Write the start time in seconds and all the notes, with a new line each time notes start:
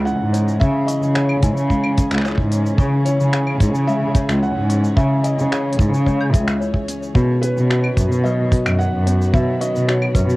Already playing: C#2 C#3 E3 G#3 B3 C#4 G#4
0.05 E4 F#5, cabasa
0.20 G#2
0.28 C#5
0.33 C#4 C#5, open hi-hat, cabasa
0.48 cabasa
0.60 C#3 E5, kick, cabasa
0.86 E4 D#5 C#6, open hi-hat, cabasa
1.02 C#3, cabasa
1.14 G#4 C#5, finger snap, cabasa
1.29 claves
1.42 G#2 E4 G#5, kick, open hi-hat, cabasa
1.57 C#3, cabasa
1.70 G#3, kick, cabasa
1.84 claves
1.97 G#4, kick, open hi-hat, cabasa
2.11 C#2, finger snap, cabasa
2.14 finger snap
2.18 finger snap
2.21 finger snap
2.25 E4 C#5, finger snap, cabasa
2.28 finger snap
2.31 finger snap
2.35 G#2, finger snap, kick
2.52 C#4, open hi-hat, cabasa
2.66 cabasa
2.78 C#3 C#6, kick, cabasa
3.05 E4 C#5, open hi-hat, cabasa
3.20 C#3, cabasa
3.33 G#4 G#5, finger snap, cabasa
3.47 claves
3.60 G#2 E4, kick, open hi-hat, cabasa
3.75 C#3, cabasa
3.87 G#3 E5, cabasa
4.15 G#4 C#5, kick, open hi-hat, cabasa
4.29 C#2, finger snap, cabasa
4.42 E4 F#5, cabasa
4.57 G#2
4.70 C#4 C#6, open hi-hat, cabasa
4.85 cabasa
4.96 C#3 E5, kick, cabasa
5.24 E4 D#5 G#5, open hi-hat, cabasa
5.38 C#3, cabasa
5.51 G#4 C#5, finger snap, cabasa
5.72 open hi-hat
5.79 G#2 E4, kick, cabasa
5.93 C#3, cabasa
6.06 G#3 C#5, kick, cabasa
6.20 claves
6.33 C#2 G#4 E5, kick, open hi-hat, cabasa
6.48 finger snap, cabasa
6.60 E4 C#5, cabasa
6.74 kick
6.88 C#4, open hi-hat, cabasa
7.03 cabasa
7.15 B2 D#3 C#5, kick, cabasa
7.41 C#4 B4, open hi-hat, cabasa
7.57 B2, cabasa
7.70 B3 F#4 C#6, finger snap, cabasa
7.75 F#4
7.84 claves
7.97 F#2 C#4, kick, open hi-hat, cabasa
8.11 B2, cabasa
8.24 F#3 B4 D#5, cabasa
8.52 F#4, kick, open hi-hat, cabasa
8.65 F#2, finger snap, cabasa, claves
8.79 C#4 F#5, cabasa
8.93 F#2
9.06 B3 C#5, open hi-hat, cabasa
9.22 cabasa
9.34 B2 E5, kick, cabasa
9.61 C#4 D#5 C#6, open hi-hat, cabasa
9.74 B2, cabasa
9.88 F#4 C#5, finger snap, cabasa
10.02 claves
10.15 F#2 C#4 B4, kick, open hi-hat, cabasa
10.29 B2, cabasa